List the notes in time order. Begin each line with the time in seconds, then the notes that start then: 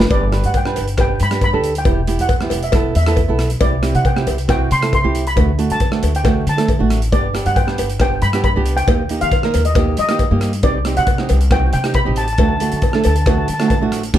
0.00 snare
0.10 G1 D4 G4 B4 D5, kick, closed hi-hat, cowbell
0.32 D4 G4 B4, cross-stick, closed hi-hat
0.44 G2 F#5, closed hi-hat
0.54 G5, kick, closed hi-hat, cowbell
0.65 D4 G4 B4, cross-stick
0.76 G1, closed hi-hat, cowbell
0.88 closed hi-hat
0.98 D4 G4 B4 G5, kick, cross-stick, closed hi-hat, cowbell
1.20 G2 B5, closed hi-hat
1.31 D4 G4 B4, cross-stick, closed hi-hat
1.41 B5, kick, closed hi-hat, cowbell
1.53 D2 D4 G4 A4
1.64 closed hi-hat
1.75 G5, closed hi-hat
1.85 E1 B3 E4 G4, kick, closed hi-hat, cowbell
2.07 B3 E4 G4, closed hi-hat
2.19 E2 F#5, closed hi-hat
2.29 kick, closed hi-hat, cowbell
2.41 B3 E4 G4, cross-stick
2.50 E1, closed hi-hat, cowbell
2.63 E5, closed hi-hat
2.72 B3 E4 A4, kick, cross-stick, closed hi-hat, cowbell
2.95 E2 E5, closed hi-hat
3.06 B3 E4 A4, cross-stick, closed hi-hat
3.16 kick, closed hi-hat, cowbell
3.28 B1 B3 E4 A4
3.39 cross-stick, closed hi-hat
3.50 closed hi-hat
3.61 C2 C4 E4 G4 D5, kick, closed hi-hat, cowbell
3.82 C4 E4 G4, cross-stick, closed hi-hat
3.95 C3 F#5, closed hi-hat
4.05 G5, kick, closed hi-hat, cowbell
4.16 C4 E4 G4, cross-stick
4.27 C2, closed hi-hat, cowbell
4.38 closed hi-hat
4.48 C4 E4 F#4 G5, kick, cross-stick, closed hi-hat, cowbell
4.71 C3 C6, closed hi-hat
4.82 C4 E4 A4, cross-stick, closed hi-hat
4.93 C6, kick, closed hi-hat, cowbell
5.04 C2 C4 E4 G4
5.15 closed hi-hat
5.27 B5, closed hi-hat
5.36 D2 A3 D4 F#4, kick, closed hi-hat, cowbell
5.58 A3 D4 F#4, closed hi-hat
5.70 D3 A5, closed hi-hat
5.80 kick, closed hi-hat, cowbell
5.91 A3 D4 F#4, cross-stick
6.03 D2, closed hi-hat, cowbell
6.15 G5, closed hi-hat
6.24 A3 D4 F#4, kick, cross-stick, closed hi-hat, cowbell
6.47 D3 A5, closed hi-hat
6.57 A3 D4 A4, cross-stick, closed hi-hat
6.68 kick, closed hi-hat, cowbell
6.79 A1 A3 D4 F#4
6.90 cross-stick, closed hi-hat
7.02 closed hi-hat
7.12 G1 B3 D4 G4 D5, kick, closed hi-hat, cowbell
7.34 B3 D4 G4, cross-stick, closed hi-hat
7.46 G2 F#5, closed hi-hat
7.56 G5, kick, closed hi-hat, cowbell
7.67 B3 D4 G4, cross-stick
7.78 G1, closed hi-hat, cowbell
7.89 closed hi-hat
8.00 B3 D4 G4 G5, kick, cross-stick, closed hi-hat, cowbell
8.22 G2 B5, closed hi-hat
8.33 B3 D4 G4, cross-stick, closed hi-hat
8.44 B5, kick, closed hi-hat, cowbell
8.56 C2 B3 D4 G4
8.66 closed hi-hat
8.77 G5, closed hi-hat
8.87 D#2 A#3 D#4 G4, kick, closed hi-hat, cowbell
9.09 A#3 D#4 G4, closed hi-hat
9.21 D#3 F5, closed hi-hat
9.31 kick, closed hi-hat, cowbell
9.43 A#3 D#4 A#4, cross-stick
9.54 D#2, closed hi-hat, cowbell
9.65 D#5, closed hi-hat
9.75 A#3 D#4 G4, kick, cross-stick, closed hi-hat, cowbell
9.97 D#3 D#5, closed hi-hat
10.09 A#3 D#4 G4, cross-stick, closed hi-hat
10.19 kick, closed hi-hat, cowbell
10.31 G2 A#3 D#4 G4
10.41 cross-stick, closed hi-hat
10.53 closed hi-hat
10.63 C2 C4 D#4 G4 D5, kick, closed hi-hat, cowbell
10.85 C4 D#4 G4, cross-stick, closed hi-hat
10.97 C3 F#5, closed hi-hat
11.07 kick, closed hi-hat, cowbell
11.18 C4 D#4 G4, cross-stick
11.29 C2, closed hi-hat, cowbell
11.41 closed hi-hat
11.50 C4 D#4 F#4 G5, kick, cross-stick, closed hi-hat, cowbell
11.73 C3 G5, closed hi-hat
11.84 C4 D#4 G4, cross-stick, closed hi-hat
11.94 B5, kick, closed hi-hat, cowbell
12.05 A1 C4 D#4 G4
12.16 A5, closed hi-hat
12.24 A5, closed hi-hat
12.33 A5
12.38 D2 A3 D4 F#4 A5, kick, closed hi-hat, cowbell
12.49 A5
12.56 A5
12.60 A3 D4 F#4 A5, closed hi-hat
12.70 D3 A5, closed hi-hat
12.77 A5
12.82 A5, kick, closed hi-hat, cowbell
12.92 A3 D4 A4 A5, cross-stick
13.01 A5, closed hi-hat
13.05 D2 A5, cowbell
13.16 A5, closed hi-hat
13.22 A5, cross-stick, closed hi-hat
13.26 A3 D4 F#4 A5, kick, cowbell
13.38 A5
13.46 D3 A5, closed hi-hat
13.54 A5
13.59 A3 D4 F#4 A5, cross-stick, closed hi-hat
13.68 A5, kick, closed hi-hat, cowbell
13.77 A5
13.81 A1 A3 D4 F#4
13.92 cross-stick, closed hi-hat
14.03 closed hi-hat
14.14 G1 B3 D4 G4, kick, crash